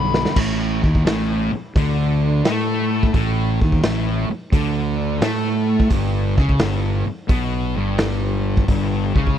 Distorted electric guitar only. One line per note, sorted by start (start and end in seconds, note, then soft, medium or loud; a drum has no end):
0.00 0.34 G2 medium
0.00 0.35 D3 medium
0.00 0.35 G3 medium
0.36 0.82 A2 loud
0.83 1.05 D#3 loud
1.05 1.51 A2 loud
1.53 muted distorted electric guitar stroke medium
1.77 2.45 D3 loud
2.45 3.14 A3 loud
3.14 3.60 A2 loud
3.62 3.83 D#3 loud
3.85 4.30 A2 loud
4.31 muted distorted electric guitar stroke medium
4.53 5.21 D3 loud
5.22 5.91 A3 loud
5.90 6.36 G2 loud
6.37 6.59 C#3 loud
6.60 7.06 G2 loud
7.07 muted distorted electric guitar stroke medium
7.28 7.75 B2 loud
7.76 8.68 G2 loud
8.69 9.15 G2 loud
9.14 9.37 C#3 loud